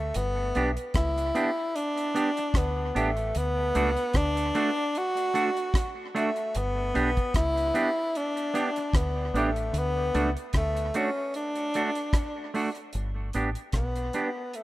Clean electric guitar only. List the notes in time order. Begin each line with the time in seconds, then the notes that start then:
0.55 B3 D4 G4
1.35 B3 D4 G4
2.15 B3 D4 G4
2.38 muted clean electric guitar stroke
2.95 B3 D4 G4
3.75 A3 D4 F#4
4.55 A3 D4 F#4
5.34 A3 D4 F#4
6.15 A3 D4 F#4
6.94 B3 D4 G4
7.74 B3 D4 G4
8.54 B3 D4 G4
8.78 muted clean electric guitar stroke
9.35 B3 D4 G4
10.14 A3 D4 F#4
10.95 A3 D4 F#4
11.75 A3 D4 F#4
12.54 A3 D4 F#4
13.35 B3 D4 G4
14.14 B3 D4 G4